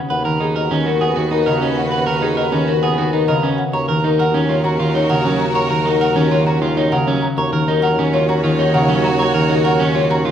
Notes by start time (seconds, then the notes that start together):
Already playing: C#3 D#3 B3
0.10 D#2 F#4 B4 F#5
0.25 D#3 A#4
0.40 D#4 G#4
0.56 A#4 D#5
0.71 D#3 C#4
0.86 F#4 A#4
1.00 B3 G#4 F#5
1.16 D#3 F#4
1.31 D#4 A#4
1.46 C#3 A#4 D#5
1.61 C#4
1.77 F#5
1.92 B4 F#5
2.07 D#3 A#4
2.22 D#4 G#4
2.37 A#4 D#5
2.52 D#3 C#4
2.67 F#4 A#4
2.83 B3 G#4 F#5
2.98 D#3 F#4
3.13 D#4 A#4
3.28 C#3 A#4 D#5
3.43 C#4
3.58 F#5
3.73 D#2 F#4 A#4 C#5 A#5
3.89 D#3 A#4
4.04 D#4 A#4
4.19 A#4 F#5
4.34 D#3 C#4
4.49 F4 C#5
4.64 C#4 F#4 A#5
4.80 D#3 F4
4.95 D#4 C#5
5.10 C#3 A#4 F#5
5.25 F#3 C#4
5.40 A#5
5.55 C#5 A#5
5.70 D#3 A#4
5.86 D#4 A#4
6.01 A#4 F#5
6.16 D#3 C#4
6.31 F4 C#5
6.46 C#4 F#4 A#5
6.62 D#3 F4
6.77 D#4 C#5
6.92 C#3 A#4 F#5
7.07 F#3 C#4
7.22 A#5
7.38 D#2 F#4 C#5 A#5
7.52 D#3 A#4
7.68 D#4 A#4
7.82 A#4 F#5
7.98 D#3 C#4
8.14 F4 C#5
8.29 C#4 F#4 A#5
8.44 D#3 F4
8.59 D#4 C#5
8.74 C#3 A#4 F#5
8.89 F#3 C#4
9.04 F#4 A#5
9.19 C#5 A#5
9.34 D#3 A#4
9.49 D#4 A#4
9.64 A#4 F#5
9.80 D#3 C#4
9.95 F4 C#5
10.10 C#4 F#4 A#5
10.25 D#3 F4